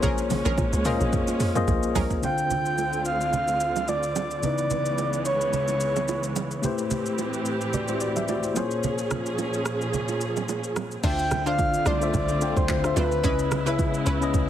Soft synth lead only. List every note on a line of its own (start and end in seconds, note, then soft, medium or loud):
2.24 3.02 G5 loud
3.06 3.90 F5 loud
3.88 4.43 D5 loud
4.43 5.22 D5 loud
5.25 5.51 C#5 medium
5.53 6.32 C#5 medium
11.04 11.44 G5 loud
11.47 11.88 F5 loud
11.87 12.14 D5 loud
12.14 12.58 D5 loud
12.57 12.69 C5 medium
12.69 12.95 C5 medium
12.97 14.03 B4 loud